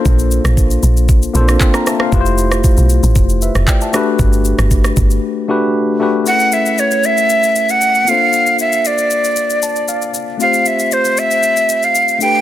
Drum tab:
SH |xxxxxxxxxxxxxxx-|xxxxxxxxxxxxxxx-|xxxxxxxx--------|xxxxxxxxxxxxxxx-|
CP |------------x---|------------x---|----------------|----------------|
SD |---r-------r-rrr|---r-------r--r-|---r-r----------|----------------|
BD |o---o---o---o---|o---o---o---o---|o---o-o---------|----------------|

SH |xxxxxxxxxxxxxxx-|xxxxxxxxxxxxxxx-|
CP |----------------|----------------|
SD |----------------|----------------|
BD |----------------|----------------|